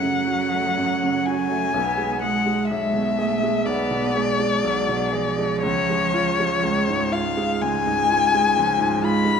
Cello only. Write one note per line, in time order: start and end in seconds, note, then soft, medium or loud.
0.00 1.74 F#3 soft
1.76 2.24 B3 soft
2.22 2.71 G#3 soft
2.71 3.22 G#3 soft
3.20 3.69 A3 soft
3.67 4.19 B3 soft
4.17 4.64 G#3 soft
4.64 5.13 F#3 soft
5.11 6.67 F3 medium
6.65 7.11 G#3 soft
7.12 8.57 G#3 soft
8.55 9.02 F3 medium
9.01 9.40 G#3 medium